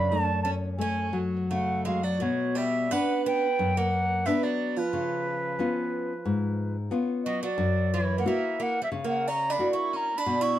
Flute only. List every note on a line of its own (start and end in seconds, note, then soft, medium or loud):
0.00 0.11 B5 loud
0.09 0.42 A5 medium
0.43 0.50 A5 medium
0.78 1.18 G#5 medium
1.50 1.84 F#5 medium
1.86 2.06 F5 medium
2.04 2.24 D5 medium
2.22 2.59 C#5 medium
2.58 2.94 E5 medium
2.92 3.26 F#5 medium
3.26 3.79 G5 medium
3.78 4.28 F#5 loud
4.26 4.45 E5 medium
4.43 4.80 D5 medium
4.78 6.76 B4 medium
7.24 7.40 D#5 medium
7.44 7.96 D5 medium
7.94 8.19 C#5 medium
8.19 8.29 F#5 medium
8.28 8.64 E5 medium
8.62 8.83 F#5 medium
8.84 8.90 E5 medium
9.06 9.29 F#5 medium
9.28 9.53 A#5 medium
9.51 9.72 B5 medium
9.73 9.98 C#6 medium
9.96 10.19 A#5 medium
10.17 10.43 B5 medium
10.42 10.59 C#6 medium